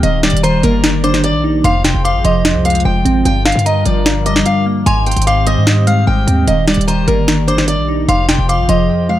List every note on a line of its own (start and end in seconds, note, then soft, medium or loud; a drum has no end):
0.00 0.25 D#1 loud
0.00 0.42 D#3 medium
0.00 1.63 D#3 medium
0.00 1.61 G4 medium
0.00 1.63 D5 medium
0.00 0.22 D#5 medium
0.00 closed hi-hat medium
0.23 0.33 D1 loud
0.23 1.24 G3 medium
0.23 0.42 D5 medium
0.23 snare loud
0.23 closed hi-hat soft
0.30 0.62 D#1 loud
0.30 closed hi-hat medium
0.37 closed hi-hat medium
0.43 0.83 D#3 medium
0.43 0.62 C5 medium
0.43 1.00 A#5 medium
0.43 closed hi-hat medium
0.63 1.36 G1 loud
0.63 1.64 A#3 medium
0.63 1.02 A#4 medium
0.63 closed hi-hat medium
0.84 1.64 D#3 medium
0.84 snare loud
0.84 closed hi-hat loud
1.04 1.64 D4 medium
1.04 1.22 C5 medium
1.04 1.61 D6 medium
1.04 closed hi-hat medium
1.14 snare medium
1.14 closed hi-hat soft
1.24 1.43 D5 medium
1.24 closed hi-hat medium
1.34 1.63 A#1 medium
1.44 1.64 D#4 loud
1.64 1.93 F1 loud
1.64 2.03 F2 loud
1.64 3.24 F3 medium
1.64 4.83 F4 medium
1.64 3.24 G#4 medium
1.64 3.24 C5 medium
1.64 1.83 F5 medium
1.64 2.02 C6 medium
1.64 closed hi-hat medium
1.84 2.85 C3 medium
1.84 2.03 G5 medium
1.84 snare loud
1.84 closed hi-hat medium
1.94 2.16 F1 loud
2.04 2.44 F2 medium
2.04 2.23 F5 medium
2.04 2.24 D6 medium
2.04 closed hi-hat medium
2.15 2.24 G#1 loud
2.25 2.56 F1 loud
2.25 3.25 F3 medium
2.25 2.63 D#5 medium
2.25 2.44 C6 medium
2.25 closed hi-hat medium
2.45 3.25 F2 medium
2.45 snare loud
2.45 closed hi-hat medium
2.55 2.83 C2 loud
2.65 3.25 G#3 medium
2.65 2.84 F5 medium
2.65 closed hi-hat medium
2.70 closed hi-hat medium
2.75 closed hi-hat medium
2.80 closed hi-hat soft
2.85 3.04 F1 loud
2.85 3.23 G5 medium
3.05 3.24 G#1 loud
3.05 3.25 C4 medium
3.05 closed hi-hat medium
3.25 3.54 G1 loud
3.25 3.64 G2 medium
3.25 4.85 G3 medium
3.25 4.85 D4 medium
3.25 4.85 A#4 medium
3.25 3.44 G5 medium
3.25 closed hi-hat medium
3.45 4.46 D3 medium
3.45 3.64 F5 medium
3.45 snare loud
3.45 closed hi-hat soft
3.52 3.84 G2 loud
3.52 closed hi-hat medium
3.59 closed hi-hat medium
3.66 4.04 G2 medium
3.66 3.85 D#5 loud
3.66 4.23 A#5 medium
3.66 closed hi-hat medium
3.86 4.44 G1 loud
3.86 4.86 F3 medium
3.86 4.24 D5 medium
3.86 closed hi-hat medium
4.06 4.86 G2 medium
4.06 snare loud
4.06 closed hi-hat medium
4.26 4.86 G3 medium
4.26 4.45 D#5 medium
4.26 4.83 D6 medium
4.26 closed hi-hat medium
4.36 snare medium
4.36 closed hi-hat soft
4.46 4.65 F5 medium
4.46 closed hi-hat medium
4.66 4.86 A#3 medium
4.86 5.15 G#1 loud
4.86 5.25 G#2 loud
4.86 6.46 C4 medium
4.86 8.05 G4 medium
4.86 6.46 C5 medium
4.86 5.05 G#5 medium
4.86 5.24 C6 loud
4.86 closed hi-hat medium
5.06 6.07 D#3 medium
5.06 5.25 G5 medium
5.06 closed hi-hat soft
5.12 closed hi-hat medium
5.16 5.58 G#1 loud
5.16 closed hi-hat medium
5.22 closed hi-hat medium
5.26 5.65 G#2 medium
5.26 5.46 F5 medium
5.26 5.46 D6 medium
5.26 closed hi-hat medium
5.47 6.48 G3 medium
5.47 5.85 D#5 medium
5.47 5.85 D#6 medium
5.47 closed hi-hat medium
5.57 6.05 G#2 loud
5.67 6.47 G#2 medium
5.67 snare loud
5.67 closed hi-hat medium
5.87 6.47 G#3 medium
5.87 6.06 F5 medium
5.87 6.44 F6 medium
5.87 closed hi-hat medium
6.07 6.27 G#1 loud
6.07 6.45 G5 medium
6.27 6.47 D#2 loud
6.27 6.47 C4 medium
6.27 closed hi-hat medium
6.47 6.69 D#1 loud
6.47 8.07 D#3 medium
6.47 6.86 D#3 medium
6.47 8.07 D5 medium
6.47 6.66 D#5 medium
6.47 closed hi-hat medium
6.67 6.77 D1 loud
6.67 7.68 G3 medium
6.67 6.86 D5 medium
6.67 snare loud
6.67 closed hi-hat soft
6.74 7.07 D#1 loud
6.74 closed hi-hat medium
6.81 closed hi-hat medium
6.88 7.27 D#3 medium
6.88 7.06 C5 medium
6.88 7.45 A#5 medium
6.88 closed hi-hat medium
7.08 7.80 G1 loud
7.08 8.09 A#3 medium
7.08 7.46 A#4 medium
7.08 closed hi-hat medium
7.28 8.09 D#3 medium
7.28 snare loud
7.28 closed hi-hat loud
7.48 8.09 D4 medium
7.48 7.67 C5 medium
7.48 8.05 D6 medium
7.48 closed hi-hat medium
7.58 snare medium
7.58 closed hi-hat soft
7.68 7.87 D5 medium
7.68 closed hi-hat medium
7.78 8.07 A#1 medium
7.88 8.09 D#4 loud
8.08 8.37 F1 loud
8.08 8.47 F2 loud
8.08 9.19 F3 medium
8.08 9.19 F4 medium
8.08 9.19 G#4 medium
8.08 9.19 C5 medium
8.08 8.27 F5 medium
8.08 8.47 C6 medium
8.08 closed hi-hat medium
8.29 9.19 C3 medium
8.29 8.47 G5 medium
8.29 snare loud
8.29 closed hi-hat medium
8.39 8.60 F1 loud
8.49 8.88 F2 medium
8.49 8.68 F5 medium
8.49 8.68 D6 medium
8.49 closed hi-hat medium
8.59 8.68 G#1 loud
8.69 8.89 F1 loud
8.69 9.19 F3 medium
8.69 9.07 D#5 medium
8.69 8.88 C6 medium
8.69 closed hi-hat medium
8.89 9.19 F2 medium
9.09 9.19 G#3 medium
9.09 9.19 F5 medium